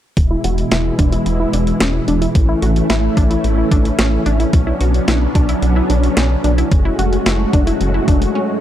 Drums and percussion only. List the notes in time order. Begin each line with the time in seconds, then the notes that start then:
0.17 kick, closed hi-hat
0.44 closed hi-hat
0.58 closed hi-hat
0.71 snare, closed hi-hat
0.99 kick, closed hi-hat
1.12 closed hi-hat
1.26 closed hi-hat
1.53 closed hi-hat
1.67 closed hi-hat
1.80 snare, closed hi-hat
2.08 closed hi-hat
2.22 closed hi-hat
2.35 kick, closed hi-hat
2.62 closed hi-hat
2.76 closed hi-hat
2.90 snare, closed hi-hat
3.17 kick, closed hi-hat
3.31 closed hi-hat
3.44 closed hi-hat
3.71 kick, closed hi-hat
3.85 closed hi-hat
3.99 snare, closed hi-hat
4.26 closed hi-hat
4.40 closed hi-hat
4.53 kick, closed hi-hat
4.81 closed hi-hat
4.94 closed hi-hat
5.08 snare, closed hi-hat
5.35 kick, closed hi-hat
5.49 closed hi-hat
5.62 closed hi-hat
5.90 closed hi-hat
6.04 closed hi-hat
6.17 snare, closed hi-hat
6.44 closed hi-hat
6.58 closed hi-hat
6.72 kick, closed hi-hat
6.99 closed hi-hat
7.13 closed hi-hat
7.26 snare, closed hi-hat
7.53 kick, closed hi-hat
7.67 closed hi-hat
7.81 closed hi-hat
8.08 kick, closed hi-hat
8.22 closed hi-hat